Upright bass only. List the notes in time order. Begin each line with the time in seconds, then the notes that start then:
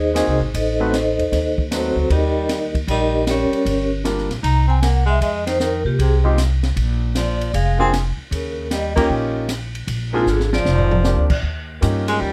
Already playing: D#2
0.27 C2
0.40 G#1
0.54 A1
1.18 E2
1.32 D#2
1.95 D2
2.10 D#2
2.87 A#1
3.51 muted upright bass stroke
3.65 G1
4.29 A#1
4.43 C2
5.21 F2
5.85 C3
5.99 C2
6.76 A#1
7.54 F1
8.17 muted upright bass stroke
8.31 D#2
9.10 A#1
9.87 A#1
10.26 G#1
10.65 F1
11.17 D2
11.30 A#2
11.43 D#2
11.82 G2
12.21 D#2